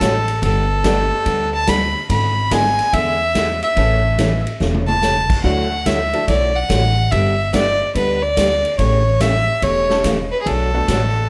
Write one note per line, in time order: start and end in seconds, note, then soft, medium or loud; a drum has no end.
0.00 0.36 A1 medium
0.00 0.13 D3 medium
0.00 0.13 F#3 medium
0.00 0.13 A3 medium
0.00 0.13 C#4 medium
0.00 0.13 F#4 medium
0.00 0.43 A4 medium
0.00 kick soft
0.00 snare medium
0.00 hi-hat pedal medium
0.00 ride medium
0.28 ride medium
0.42 1.09 G1 medium
0.42 0.65 G3 medium
0.42 0.65 B3 medium
0.42 0.65 D4 medium
0.42 0.65 A4 medium
0.42 1.50 A4 loud
0.42 kick soft
0.42 ride medium
0.84 0.96 G3 medium
0.84 1.48 A3 medium
0.84 1.48 B3 medium
0.84 0.96 B3 medium
0.84 1.48 D4 medium
0.84 0.97 D4 medium
0.84 1.48 G4 medium
0.84 0.97 A4 medium
0.84 1.49 A4 medium
0.84 kick soft
0.84 snare medium
0.84 hi-hat pedal medium
0.84 ride medium
1.26 1.93 D2 medium
1.26 1.49 G3 medium
1.26 1.49 B3 medium
1.26 1.49 D4 medium
1.26 1.49 A4 medium
1.26 kick soft
1.26 ride medium
1.55 1.70 A5 loud
1.67 1.79 G3 medium
1.67 1.79 B3 medium
1.67 1.80 D4 medium
1.67 1.80 A4 medium
1.67 2.10 B5 loud
1.67 kick soft
1.67 snare medium
1.67 hi-hat pedal medium
1.67 ride medium
2.09 2.76 G#1 medium
2.09 2.32 D3 medium
2.09 2.32 G#3 medium
2.09 2.32 B3 medium
2.09 2.32 E4 medium
2.09 2.32 G#4 medium
2.09 2.54 B5 medium
2.09 kick soft
2.09 ride medium
2.51 2.63 D3 medium
2.51 3.15 G#3 medium
2.51 2.63 G#3 medium
2.51 3.15 B3 medium
2.51 2.64 B3 medium
2.51 3.15 D4 medium
2.51 3.16 E4 medium
2.51 2.64 E4 loud
2.51 2.64 G#4 medium
2.51 3.16 G#4 medium
2.51 2.95 G#5 loud
2.51 kick soft
2.51 snare medium
2.51 hi-hat pedal medium
2.51 ride medium
2.79 ride soft
2.93 3.60 E2 medium
2.93 3.16 D3 medium
2.93 3.16 G#3 medium
2.93 3.16 B3 medium
2.93 3.16 E4 medium
2.93 3.16 G#4 medium
2.93 3.63 E5 loud
2.93 kick soft
2.93 ride medium
3.35 3.47 D3 medium
3.35 3.47 G#3 medium
3.35 3.47 B3 medium
3.35 3.47 E4 medium
3.35 3.47 G#4 medium
3.35 kick soft
3.35 snare medium
3.35 hi-hat pedal medium
3.35 ride medium
3.63 4.43 E5 medium
3.63 ride medium
3.76 4.44 A1 medium
3.76 3.99 C#3 medium
3.76 4.40 E3 medium
3.76 3.99 E3 medium
3.76 4.41 A3 medium
3.76 3.99 A3 medium
3.76 4.41 C#4 medium
3.76 3.99 C#4 medium
3.76 4.41 E4 medium
3.76 4.41 A4 medium
3.76 4.00 A4 medium
3.76 kick soft
3.76 ride medium
4.19 4.31 C#3 medium
4.19 4.31 E3 medium
4.19 4.31 A3 medium
4.19 4.31 C#4 medium
4.19 4.31 A4 medium
4.19 kick soft
4.19 snare medium
4.19 hi-hat pedal soft
4.19 ride medium
4.47 ride soft
4.60 5.27 E1 medium
4.60 4.83 C#3 soft
4.60 4.83 E3 medium
4.60 4.83 A3 medium
4.60 4.83 C#4 medium
4.60 4.83 A4 medium
4.60 snare medium
4.74 mid tom medium
4.87 5.40 A5 loud
4.87 mid tom medium
5.02 5.14 C#3 medium
5.02 5.14 E3 medium
5.02 5.14 A3 medium
5.02 5.14 C#4 medium
5.02 5.14 A4 medium
5.02 snare medium
5.02 hi-hat pedal medium
5.30 kick medium
5.30 crash medium
5.43 6.11 D2 loud
5.43 5.66 D3 medium
5.43 5.66 F#3 medium
5.43 5.69 F#3 medium
5.43 5.69 A3 medium
5.43 5.67 A3 medium
5.43 5.69 D4 medium
5.43 5.66 E4 medium
5.43 5.69 E4 medium
5.43 5.67 F#4 medium
5.43 5.70 F#4 medium
5.43 5.88 F#5 medium
5.43 kick soft
5.86 5.98 D3 medium
5.86 5.98 F#3 medium
5.86 5.98 A3 medium
5.86 5.98 E4 medium
5.86 5.98 F#4 medium
5.86 6.28 E5 loud
5.86 kick soft
5.86 snare medium
5.86 hi-hat pedal medium
5.86 ride medium
6.13 6.26 F#3 medium
6.13 6.26 A3 medium
6.13 6.27 D4 medium
6.13 6.27 E4 medium
6.13 6.27 A4 medium
6.13 ride soft
6.28 6.63 B1 medium
6.28 6.50 D3 medium
6.28 6.51 F#3 medium
6.28 6.51 A3 medium
6.28 6.51 E4 medium
6.28 6.51 F#4 medium
6.28 6.57 D5 loud
6.28 kick soft
6.28 ride medium
6.56 7.13 F#5 loud
6.69 7.05 A1 medium
6.69 6.81 D3 medium
6.69 6.82 F#3 medium
6.69 6.82 A3 medium
6.69 6.82 E4 medium
6.69 6.82 F#4 medium
6.69 kick soft
6.69 snare medium
6.69 hi-hat pedal medium
6.69 ride medium
7.12 7.79 G1 medium
7.12 7.34 D3 medium
7.12 7.34 G3 medium
7.12 7.34 B3 medium
7.12 7.34 D4 medium
7.12 7.34 G4 medium
7.12 7.54 E5 medium
7.12 kick soft
7.12 ride medium
7.53 7.65 D3 medium
7.53 7.65 G3 medium
7.53 7.65 B3 medium
7.53 7.65 D4 medium
7.53 7.65 G4 medium
7.53 7.93 D5 loud
7.53 kick soft
7.53 snare medium
7.53 hi-hat pedal medium
7.53 ride medium
7.95 8.62 D2 medium
7.95 8.18 D3 medium
7.95 8.18 G3 medium
7.95 8.18 B3 medium
7.95 8.18 D4 medium
7.95 8.18 G4 medium
7.95 8.24 B4 medium
7.95 kick soft
7.95 ride medium
8.23 8.78 D5 loud
8.37 8.49 D3 medium
8.37 8.49 G3 medium
8.37 8.49 B3 medium
8.37 8.49 D4 medium
8.37 8.49 G4 medium
8.37 kick soft
8.37 snare medium
8.37 hi-hat pedal medium
8.37 ride medium
8.65 ride soft
8.78 9.46 A1 loud
8.78 9.01 C#3 medium
8.78 9.01 E3 medium
8.78 9.01 A3 medium
8.78 9.02 C#4 medium
8.78 9.02 G4 medium
8.78 9.22 C#5 medium
8.78 kick soft
8.78 ride medium
9.20 9.32 C#3 medium
9.20 9.33 E3 medium
9.20 9.33 A3 medium
9.20 9.33 C#4 medium
9.20 9.33 G4 medium
9.20 9.64 E5 loud
9.20 kick soft
9.20 snare medium
9.20 hi-hat pedal soft
9.20 ride medium
9.62 10.30 E1 medium
9.62 9.85 C#3 soft
9.62 9.85 E3 medium
9.62 9.85 A3 medium
9.62 9.85 C#4 medium
9.62 9.85 G4 medium
9.62 10.05 C#5 loud
9.62 kick soft
9.62 ride medium
9.89 10.03 A3 medium
9.89 10.03 C#4 medium
9.89 10.03 E4 medium
9.89 10.03 G4 medium
9.89 10.04 A4 medium
9.89 snare medium
10.04 10.16 C#3 medium
10.04 10.17 E3 medium
10.04 10.17 A3 medium
10.04 10.17 C#4 medium
10.04 10.17 G4 medium
10.04 kick soft
10.04 snare medium
10.04 hi-hat pedal medium
10.04 ride medium
10.32 10.41 B4 medium
10.42 10.49 G#4 medium
10.46 10.80 B1 medium
10.46 10.69 B2 medium
10.46 10.69 F#3 medium
10.46 10.69 A3 medium
10.46 10.69 D4 medium
10.46 10.70 F#4 medium
10.46 11.29 A4 medium
10.46 kick soft
10.46 ride medium
10.74 11.27 A3 medium
10.74 11.28 B3 medium
10.74 11.28 D4 medium
10.74 11.28 F#4 medium
10.74 11.28 A4 medium
10.88 11.24 A1 medium
10.88 11.00 B2 medium
10.88 11.00 F#3 medium
10.88 11.01 A3 medium
10.88 11.01 D4 medium
10.88 11.01 F#4 medium
10.88 kick soft
10.88 snare medium
10.88 hi-hat pedal medium
10.88 ride medium